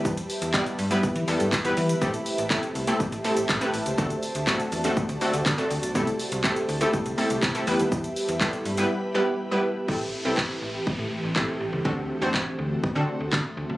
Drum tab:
HH |-xox-xox-xox-xox|-xox-xox-xox-xox|-xox-xox-xox-xox|-xox-xox-xox-xox|
SH |xxxxxxxxxxxxxxxx|xxxxxxxxxxxxxxxx|xxxxxxxxxxxxxxxx|xxxxxxxxxxxxxxxx|
CP |----x-------x---|----x-------x---|----x-------x---|----x-------x---|
BD |o---o---o---o---|o---o---o---o---|o---o---o---o---|o---o---o---o---|

HH |-xox-xox--------|----------------|----------------|
SH |xxxxxxxx--------|----------------|----------------|
CP |----x-----------|----x-------x---|----x-------x---|
BD |o---o-----------|o---o---o---o---|o---o---o---o---|